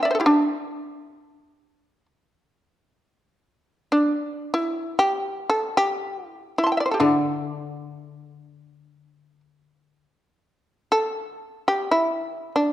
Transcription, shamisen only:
0.03 0.10 D5 soft
0.03 0.19 E5 soft
0.11 0.14 C5 soft
0.15 0.19 A4 soft
0.20 0.26 E4 soft
0.20 0.36 G4 soft
0.26 2.06 D4 medium
3.92 4.53 D4 medium
4.54 4.97 E4 medium
4.99 5.48 G4 medium
5.50 5.76 A4 medium
5.77 6.29 G4 medium
6.29 6.55 E4 medium
6.58 6.94 E4 medium
6.64 6.72 A5 soft
6.64 6.81 C6 soft
6.72 6.77 G5 soft
6.77 6.85 D5 soft
6.77 6.80 E5 soft
6.86 6.91 C5 soft
6.91 7.00 G4 soft
6.91 7.09 A4 soft
7.00 9.40 D4 soft
7.00 7.18 E4 soft
10.92 11.66 A4 medium
11.68 11.88 G4 medium
11.91 12.52 E4 medium
12.56 12.73 D4 medium

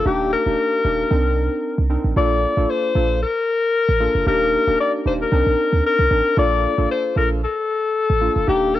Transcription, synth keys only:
0.06 0.43 A#3 loud
0.06 0.43 D4 medium
0.06 0.43 D#4 medium
0.06 0.43 G4 loud
0.46 0.82 A#3 medium
0.46 0.82 D4 medium
0.46 0.82 D#4 medium
0.46 0.82 G4 medium
0.84 1.09 A#3 medium
0.84 1.09 D4 medium
0.84 1.09 D#4 medium
0.84 1.09 G4 medium
1.11 1.84 C4 medium
1.11 1.84 D4 medium
1.11 1.84 D#4 medium
1.11 1.84 A#4 loud
1.90 2.14 C4 medium
1.90 2.14 D4 medium
1.90 2.14 D#4 medium
1.90 2.14 A#4 medium
2.16 2.53 A#3 medium
2.16 2.54 D4 medium
2.16 2.54 F4 medium
2.16 2.54 A4 loud
2.57 2.92 A#3 medium
2.57 2.92 D4 medium
2.57 2.92 F4 medium
2.57 2.92 A4 medium
2.95 3.19 A#3 medium
2.95 3.20 D4 medium
2.95 3.20 F4 medium
2.95 3.20 A4 medium
4.00 4.25 A#3 medium
4.00 4.25 D4 medium
4.00 4.25 F4 medium
4.00 4.25 A4 medium
4.26 4.64 A#3 loud
4.26 4.64 D4 medium
4.26 4.64 D#4 medium
4.26 4.64 G4 loud
4.67 5.03 A#3 medium
4.67 5.03 D4 medium
4.67 5.03 D#4 medium
4.67 5.03 G4 medium
5.05 5.30 A#3 medium
5.05 5.30 D4 medium
5.05 5.30 D#4 medium
5.05 5.30 G4 medium
5.32 6.05 C4 medium
5.32 6.05 D4 medium
5.32 6.05 D#4 medium
5.32 6.05 A#4 loud
6.11 6.35 C4 medium
6.11 6.35 D4 medium
6.11 6.35 D#4 medium
6.11 6.36 A#4 medium
6.37 6.74 A#3 loud
6.37 6.75 D4 medium
6.37 6.75 F4 medium
6.37 6.75 A4 loud
6.78 7.13 A#3 medium
6.78 7.13 D4 medium
6.78 7.13 F4 medium
6.78 7.14 A4 medium
7.16 7.41 A#3 medium
7.16 7.41 D4 medium
7.16 7.41 F4 medium
7.16 7.41 A4 medium
8.21 8.46 A#3 medium
8.21 8.46 D4 medium
8.21 8.46 F4 medium
8.21 8.46 A4 medium
8.47 8.80 A#3 loud
8.47 8.80 D4 medium
8.47 8.80 D#4 medium
8.47 8.80 G4 loud

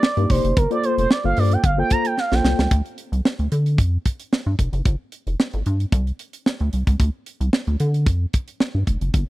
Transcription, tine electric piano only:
0.17 0.53 A#3 medium
0.17 0.53 D#4 medium
0.17 0.53 G4 medium
0.17 0.53 D5 medium
0.71 1.06 A#3 medium
0.71 1.06 F4 medium
0.71 1.06 A4 medium
0.71 1.07 C5 medium
1.24 1.60 A#3 medium
1.24 1.60 F4 medium
1.24 1.60 A4 medium
1.24 1.60 C5 medium
1.78 2.13 A#3 medium
1.78 2.14 F4 medium
1.78 2.14 A4 medium
1.78 2.14 C5 loud
2.32 2.67 A#3 medium
2.32 2.67 F4 medium
2.32 2.68 A4 medium
2.32 2.68 C5 medium

